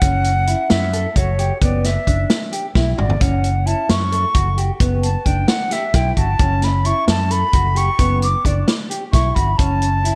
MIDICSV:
0, 0, Header, 1, 5, 480
1, 0, Start_track
1, 0, Tempo, 455581
1, 24, Time_signature, 7, 3, 24, 8
1, 10695, End_track
2, 0, Start_track
2, 0, Title_t, "Flute"
2, 0, Program_c, 0, 73
2, 0, Note_on_c, 0, 78, 91
2, 743, Note_on_c, 0, 76, 82
2, 759, Note_off_c, 0, 78, 0
2, 1228, Note_on_c, 0, 73, 73
2, 1244, Note_off_c, 0, 76, 0
2, 1702, Note_off_c, 0, 73, 0
2, 1708, Note_on_c, 0, 74, 75
2, 1951, Note_on_c, 0, 76, 79
2, 1967, Note_off_c, 0, 74, 0
2, 2666, Note_off_c, 0, 76, 0
2, 3140, Note_on_c, 0, 74, 67
2, 3387, Note_on_c, 0, 78, 75
2, 3403, Note_off_c, 0, 74, 0
2, 3861, Note_on_c, 0, 81, 86
2, 3877, Note_off_c, 0, 78, 0
2, 4111, Note_on_c, 0, 85, 85
2, 4127, Note_off_c, 0, 81, 0
2, 4826, Note_off_c, 0, 85, 0
2, 5298, Note_on_c, 0, 81, 76
2, 5536, Note_on_c, 0, 79, 84
2, 5552, Note_off_c, 0, 81, 0
2, 5772, Note_on_c, 0, 78, 82
2, 5788, Note_off_c, 0, 79, 0
2, 6031, Note_on_c, 0, 76, 81
2, 6047, Note_off_c, 0, 78, 0
2, 6269, Note_on_c, 0, 79, 79
2, 6285, Note_off_c, 0, 76, 0
2, 6494, Note_off_c, 0, 79, 0
2, 6500, Note_on_c, 0, 81, 85
2, 6995, Note_on_c, 0, 83, 88
2, 7011, Note_off_c, 0, 81, 0
2, 7227, Note_on_c, 0, 85, 95
2, 7243, Note_off_c, 0, 83, 0
2, 7464, Note_off_c, 0, 85, 0
2, 7471, Note_on_c, 0, 81, 90
2, 7705, Note_on_c, 0, 83, 105
2, 7721, Note_off_c, 0, 81, 0
2, 8189, Note_on_c, 0, 85, 95
2, 8204, Note_off_c, 0, 83, 0
2, 8665, Note_off_c, 0, 85, 0
2, 8671, Note_on_c, 0, 86, 90
2, 8910, Note_on_c, 0, 74, 75
2, 8926, Note_off_c, 0, 86, 0
2, 9145, Note_off_c, 0, 74, 0
2, 9617, Note_on_c, 0, 85, 91
2, 9849, Note_on_c, 0, 83, 81
2, 9865, Note_off_c, 0, 85, 0
2, 10088, Note_on_c, 0, 81, 87
2, 10104, Note_off_c, 0, 83, 0
2, 10695, Note_off_c, 0, 81, 0
2, 10695, End_track
3, 0, Start_track
3, 0, Title_t, "Clean electric guitar"
3, 0, Program_c, 1, 27
3, 20, Note_on_c, 1, 61, 80
3, 299, Note_off_c, 1, 61, 0
3, 503, Note_on_c, 1, 64, 73
3, 781, Note_off_c, 1, 64, 0
3, 984, Note_on_c, 1, 69, 64
3, 1123, Note_off_c, 1, 69, 0
3, 1225, Note_on_c, 1, 66, 77
3, 1364, Note_off_c, 1, 66, 0
3, 1463, Note_on_c, 1, 67, 73
3, 1602, Note_off_c, 1, 67, 0
3, 1708, Note_on_c, 1, 59, 80
3, 1985, Note_off_c, 1, 59, 0
3, 2184, Note_on_c, 1, 62, 69
3, 2462, Note_off_c, 1, 62, 0
3, 2660, Note_on_c, 1, 67, 64
3, 2799, Note_off_c, 1, 67, 0
3, 2905, Note_on_c, 1, 64, 77
3, 3043, Note_off_c, 1, 64, 0
3, 3136, Note_on_c, 1, 66, 73
3, 3277, Note_off_c, 1, 66, 0
3, 3375, Note_on_c, 1, 61, 83
3, 3655, Note_off_c, 1, 61, 0
3, 3857, Note_on_c, 1, 64, 71
3, 4136, Note_off_c, 1, 64, 0
3, 4339, Note_on_c, 1, 69, 63
3, 4479, Note_off_c, 1, 69, 0
3, 4581, Note_on_c, 1, 66, 77
3, 4720, Note_off_c, 1, 66, 0
3, 4821, Note_on_c, 1, 67, 70
3, 4960, Note_off_c, 1, 67, 0
3, 5064, Note_on_c, 1, 59, 78
3, 5341, Note_off_c, 1, 59, 0
3, 5542, Note_on_c, 1, 62, 68
3, 5820, Note_off_c, 1, 62, 0
3, 6013, Note_on_c, 1, 67, 66
3, 6154, Note_off_c, 1, 67, 0
3, 6256, Note_on_c, 1, 64, 83
3, 6397, Note_off_c, 1, 64, 0
3, 6500, Note_on_c, 1, 66, 76
3, 6639, Note_off_c, 1, 66, 0
3, 6742, Note_on_c, 1, 61, 85
3, 7020, Note_off_c, 1, 61, 0
3, 7215, Note_on_c, 1, 64, 74
3, 7495, Note_off_c, 1, 64, 0
3, 7695, Note_on_c, 1, 69, 70
3, 7836, Note_off_c, 1, 69, 0
3, 7941, Note_on_c, 1, 66, 81
3, 8080, Note_off_c, 1, 66, 0
3, 8170, Note_on_c, 1, 67, 75
3, 8313, Note_off_c, 1, 67, 0
3, 8415, Note_on_c, 1, 59, 78
3, 8695, Note_off_c, 1, 59, 0
3, 8894, Note_on_c, 1, 62, 70
3, 9175, Note_off_c, 1, 62, 0
3, 9376, Note_on_c, 1, 67, 66
3, 9517, Note_off_c, 1, 67, 0
3, 9615, Note_on_c, 1, 64, 79
3, 9756, Note_off_c, 1, 64, 0
3, 9854, Note_on_c, 1, 66, 72
3, 9995, Note_off_c, 1, 66, 0
3, 10100, Note_on_c, 1, 61, 86
3, 10379, Note_off_c, 1, 61, 0
3, 10579, Note_on_c, 1, 64, 71
3, 10695, Note_off_c, 1, 64, 0
3, 10695, End_track
4, 0, Start_track
4, 0, Title_t, "Fretless electric bass"
4, 0, Program_c, 2, 35
4, 20, Note_on_c, 2, 30, 80
4, 565, Note_off_c, 2, 30, 0
4, 745, Note_on_c, 2, 42, 90
4, 1107, Note_off_c, 2, 42, 0
4, 1218, Note_on_c, 2, 30, 84
4, 1582, Note_off_c, 2, 30, 0
4, 1699, Note_on_c, 2, 30, 94
4, 2062, Note_off_c, 2, 30, 0
4, 2180, Note_on_c, 2, 30, 75
4, 2362, Note_off_c, 2, 30, 0
4, 2899, Note_on_c, 2, 35, 86
4, 3081, Note_off_c, 2, 35, 0
4, 3143, Note_on_c, 2, 31, 85
4, 3324, Note_off_c, 2, 31, 0
4, 3380, Note_on_c, 2, 30, 81
4, 3924, Note_off_c, 2, 30, 0
4, 4101, Note_on_c, 2, 42, 86
4, 4463, Note_off_c, 2, 42, 0
4, 4581, Note_on_c, 2, 30, 79
4, 4943, Note_off_c, 2, 30, 0
4, 5057, Note_on_c, 2, 30, 88
4, 5421, Note_off_c, 2, 30, 0
4, 5541, Note_on_c, 2, 30, 79
4, 5722, Note_off_c, 2, 30, 0
4, 6255, Note_on_c, 2, 35, 92
4, 6438, Note_off_c, 2, 35, 0
4, 6496, Note_on_c, 2, 31, 93
4, 6679, Note_off_c, 2, 31, 0
4, 6737, Note_on_c, 2, 30, 90
4, 7282, Note_off_c, 2, 30, 0
4, 7453, Note_on_c, 2, 42, 93
4, 7819, Note_off_c, 2, 42, 0
4, 7937, Note_on_c, 2, 30, 86
4, 8301, Note_off_c, 2, 30, 0
4, 8418, Note_on_c, 2, 30, 95
4, 8782, Note_off_c, 2, 30, 0
4, 8902, Note_on_c, 2, 30, 83
4, 9083, Note_off_c, 2, 30, 0
4, 9623, Note_on_c, 2, 35, 91
4, 9804, Note_off_c, 2, 35, 0
4, 9866, Note_on_c, 2, 31, 82
4, 10046, Note_off_c, 2, 31, 0
4, 10103, Note_on_c, 2, 30, 83
4, 10646, Note_off_c, 2, 30, 0
4, 10695, End_track
5, 0, Start_track
5, 0, Title_t, "Drums"
5, 14, Note_on_c, 9, 42, 77
5, 19, Note_on_c, 9, 36, 94
5, 120, Note_off_c, 9, 42, 0
5, 124, Note_off_c, 9, 36, 0
5, 256, Note_on_c, 9, 42, 57
5, 362, Note_off_c, 9, 42, 0
5, 499, Note_on_c, 9, 42, 58
5, 604, Note_off_c, 9, 42, 0
5, 736, Note_on_c, 9, 38, 100
5, 736, Note_on_c, 9, 42, 75
5, 842, Note_off_c, 9, 38, 0
5, 842, Note_off_c, 9, 42, 0
5, 982, Note_on_c, 9, 42, 61
5, 1088, Note_off_c, 9, 42, 0
5, 1220, Note_on_c, 9, 42, 75
5, 1221, Note_on_c, 9, 36, 89
5, 1325, Note_off_c, 9, 42, 0
5, 1327, Note_off_c, 9, 36, 0
5, 1461, Note_on_c, 9, 42, 58
5, 1567, Note_off_c, 9, 42, 0
5, 1702, Note_on_c, 9, 36, 90
5, 1702, Note_on_c, 9, 42, 73
5, 1807, Note_off_c, 9, 42, 0
5, 1808, Note_off_c, 9, 36, 0
5, 1942, Note_on_c, 9, 38, 31
5, 1942, Note_on_c, 9, 42, 58
5, 2047, Note_off_c, 9, 38, 0
5, 2047, Note_off_c, 9, 42, 0
5, 2183, Note_on_c, 9, 36, 60
5, 2184, Note_on_c, 9, 42, 53
5, 2289, Note_off_c, 9, 36, 0
5, 2290, Note_off_c, 9, 42, 0
5, 2421, Note_on_c, 9, 38, 99
5, 2421, Note_on_c, 9, 42, 69
5, 2526, Note_off_c, 9, 38, 0
5, 2526, Note_off_c, 9, 42, 0
5, 2661, Note_on_c, 9, 42, 58
5, 2766, Note_off_c, 9, 42, 0
5, 2900, Note_on_c, 9, 38, 52
5, 2902, Note_on_c, 9, 36, 95
5, 3005, Note_off_c, 9, 38, 0
5, 3007, Note_off_c, 9, 36, 0
5, 3143, Note_on_c, 9, 45, 80
5, 3249, Note_off_c, 9, 45, 0
5, 3262, Note_on_c, 9, 43, 79
5, 3367, Note_off_c, 9, 43, 0
5, 3379, Note_on_c, 9, 42, 71
5, 3383, Note_on_c, 9, 36, 95
5, 3485, Note_off_c, 9, 42, 0
5, 3488, Note_off_c, 9, 36, 0
5, 3622, Note_on_c, 9, 42, 56
5, 3727, Note_off_c, 9, 42, 0
5, 3863, Note_on_c, 9, 42, 52
5, 3969, Note_off_c, 9, 42, 0
5, 4102, Note_on_c, 9, 38, 92
5, 4102, Note_on_c, 9, 42, 76
5, 4207, Note_off_c, 9, 38, 0
5, 4207, Note_off_c, 9, 42, 0
5, 4343, Note_on_c, 9, 42, 59
5, 4449, Note_off_c, 9, 42, 0
5, 4579, Note_on_c, 9, 42, 78
5, 4581, Note_on_c, 9, 36, 95
5, 4685, Note_off_c, 9, 42, 0
5, 4686, Note_off_c, 9, 36, 0
5, 4821, Note_on_c, 9, 42, 60
5, 4927, Note_off_c, 9, 42, 0
5, 5059, Note_on_c, 9, 42, 79
5, 5060, Note_on_c, 9, 36, 102
5, 5164, Note_off_c, 9, 42, 0
5, 5165, Note_off_c, 9, 36, 0
5, 5301, Note_on_c, 9, 42, 58
5, 5406, Note_off_c, 9, 42, 0
5, 5540, Note_on_c, 9, 36, 64
5, 5540, Note_on_c, 9, 42, 61
5, 5645, Note_off_c, 9, 36, 0
5, 5645, Note_off_c, 9, 42, 0
5, 5773, Note_on_c, 9, 38, 100
5, 5773, Note_on_c, 9, 42, 73
5, 5879, Note_off_c, 9, 38, 0
5, 5879, Note_off_c, 9, 42, 0
5, 6016, Note_on_c, 9, 38, 32
5, 6016, Note_on_c, 9, 42, 62
5, 6121, Note_off_c, 9, 38, 0
5, 6121, Note_off_c, 9, 42, 0
5, 6254, Note_on_c, 9, 38, 32
5, 6254, Note_on_c, 9, 42, 81
5, 6259, Note_on_c, 9, 36, 97
5, 6359, Note_off_c, 9, 38, 0
5, 6359, Note_off_c, 9, 42, 0
5, 6364, Note_off_c, 9, 36, 0
5, 6497, Note_on_c, 9, 42, 58
5, 6499, Note_on_c, 9, 36, 62
5, 6603, Note_off_c, 9, 42, 0
5, 6605, Note_off_c, 9, 36, 0
5, 6733, Note_on_c, 9, 42, 70
5, 6738, Note_on_c, 9, 36, 97
5, 6838, Note_off_c, 9, 42, 0
5, 6843, Note_off_c, 9, 36, 0
5, 6975, Note_on_c, 9, 38, 31
5, 6975, Note_on_c, 9, 42, 58
5, 7080, Note_off_c, 9, 38, 0
5, 7080, Note_off_c, 9, 42, 0
5, 7214, Note_on_c, 9, 42, 53
5, 7320, Note_off_c, 9, 42, 0
5, 7457, Note_on_c, 9, 38, 94
5, 7457, Note_on_c, 9, 42, 72
5, 7562, Note_off_c, 9, 38, 0
5, 7562, Note_off_c, 9, 42, 0
5, 7697, Note_on_c, 9, 42, 57
5, 7803, Note_off_c, 9, 42, 0
5, 7934, Note_on_c, 9, 42, 73
5, 7938, Note_on_c, 9, 36, 99
5, 8039, Note_off_c, 9, 42, 0
5, 8043, Note_off_c, 9, 36, 0
5, 8176, Note_on_c, 9, 42, 58
5, 8282, Note_off_c, 9, 42, 0
5, 8416, Note_on_c, 9, 42, 75
5, 8418, Note_on_c, 9, 36, 92
5, 8522, Note_off_c, 9, 42, 0
5, 8524, Note_off_c, 9, 36, 0
5, 8661, Note_on_c, 9, 42, 59
5, 8767, Note_off_c, 9, 42, 0
5, 8901, Note_on_c, 9, 36, 62
5, 8906, Note_on_c, 9, 42, 61
5, 9007, Note_off_c, 9, 36, 0
5, 9011, Note_off_c, 9, 42, 0
5, 9142, Note_on_c, 9, 38, 91
5, 9142, Note_on_c, 9, 42, 75
5, 9247, Note_off_c, 9, 38, 0
5, 9247, Note_off_c, 9, 42, 0
5, 9385, Note_on_c, 9, 42, 65
5, 9491, Note_off_c, 9, 42, 0
5, 9624, Note_on_c, 9, 36, 96
5, 9626, Note_on_c, 9, 38, 33
5, 9626, Note_on_c, 9, 42, 82
5, 9729, Note_off_c, 9, 36, 0
5, 9731, Note_off_c, 9, 38, 0
5, 9731, Note_off_c, 9, 42, 0
5, 9864, Note_on_c, 9, 36, 66
5, 9867, Note_on_c, 9, 42, 61
5, 9970, Note_off_c, 9, 36, 0
5, 9973, Note_off_c, 9, 42, 0
5, 10104, Note_on_c, 9, 36, 98
5, 10106, Note_on_c, 9, 42, 80
5, 10209, Note_off_c, 9, 36, 0
5, 10211, Note_off_c, 9, 42, 0
5, 10343, Note_on_c, 9, 42, 59
5, 10448, Note_off_c, 9, 42, 0
5, 10588, Note_on_c, 9, 42, 58
5, 10694, Note_off_c, 9, 42, 0
5, 10695, End_track
0, 0, End_of_file